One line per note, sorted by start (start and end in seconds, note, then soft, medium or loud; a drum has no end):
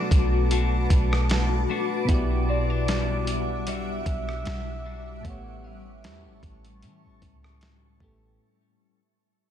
0.00 2.03 B2 medium
0.00 2.08 B2 medium
0.00 0.50 A3 medium
0.00 2.04 B3 medium
0.00 0.51 D4 medium
0.00 0.52 F#4 medium
0.00 2.05 F#4 medium
0.00 2.06 A4 medium
0.00 2.06 B4 medium
0.00 2.08 D5 medium
0.00 2.06 A5 medium
0.00 5.21 D6 medium
0.11 0.87 B1 loud
0.11 kick loud
0.11 closed hi-hat medium
0.51 1.68 A3 medium
0.51 1.70 D4 medium
0.51 1.70 F#4 medium
0.51 closed hi-hat medium
0.90 1.66 B1 loud
0.90 kick loud
0.90 closed hi-hat medium
1.13 cross-stick loud
1.30 snare loud
1.30 closed hi-hat medium
1.70 2.18 A3 medium
1.70 2.48 D4 medium
1.70 2.09 F#4 medium
2.05 5.19 B2 medium
2.05 5.20 B3 medium
2.05 5.21 E4 medium
2.05 kick loud
2.05 closed hi-hat medium
2.09 4.02 B1 loud
2.09 5.24 B2 medium
2.09 8.37 G3 medium
2.09 2.88 F#4 medium
2.09 5.22 F#4 medium
2.09 5.22 G4 medium
2.09 8.37 E5 medium
2.09 5.22 F#5 medium
2.14 5.23 D5 medium
2.49 2.70 C4 medium
2.49 3.69 D5 medium
2.70 2.87 D4 medium
2.88 3.66 G3 medium
2.88 3.66 D4 medium
2.88 3.67 F#4 medium
2.88 snare loud
2.88 closed hi-hat medium
3.27 closed hi-hat medium
3.67 4.85 G3 medium
3.67 4.85 D4 medium
3.67 4.85 F#4 medium
3.67 4.07 E5 loud
3.67 closed hi-hat medium
4.06 4.44 B1 loud
4.06 5.27 E5 loud
4.06 kick loud
4.06 closed hi-hat medium
4.29 cross-stick loud
4.45 5.22 B1 loud
4.45 snare loud
4.45 closed hi-hat medium
4.85 5.67 G3 medium
4.85 5.34 D4 medium
4.85 5.25 F#4 medium
5.21 7.95 A2 medium
5.21 8.75 A2 medium
5.21 7.96 A3 medium
5.21 8.37 A5 medium
5.21 8.37 C#6 medium
5.21 kick loud
5.21 closed hi-hat medium
5.25 6.06 A1 loud
5.25 7.97 B3 medium
5.25 6.05 E4 medium
5.25 7.98 G4 medium
5.25 5.67 F#5 loud
5.30 8.00 C#5 medium
5.64 6.04 C#4 medium
5.64 6.83 E5 loud
6.04 6.27 E2 loud
6.04 6.82 G3 medium
6.04 6.83 C#4 medium
6.04 6.83 E4 medium
6.04 snare loud
6.04 closed hi-hat medium
6.26 6.43 A1 loud
6.43 6.85 A1 loud
6.43 kick medium
6.43 closed hi-hat medium
6.65 closed hi-hat medium
6.82 7.06 E3 loud
6.82 8.01 G3 medium
6.82 8.02 C#4 medium
6.82 8.02 E4 medium
6.82 closed hi-hat medium
7.05 7.22 A1 medium
7.22 7.98 C#2 loud
7.22 kick loud
7.22 closed hi-hat medium
7.44 cross-stick loud
7.61 snare loud
7.61 closed hi-hat medium
7.99 8.39 A1 loud
7.99 8.40 A2 medium
7.99 9.00 G3 medium
7.99 8.40 A3 medium
7.99 8.41 B3 medium
7.99 9.00 C#4 medium
7.99 9.00 E4 medium
7.99 8.41 G4 medium
7.99 kick loud
8.04 8.42 A4 medium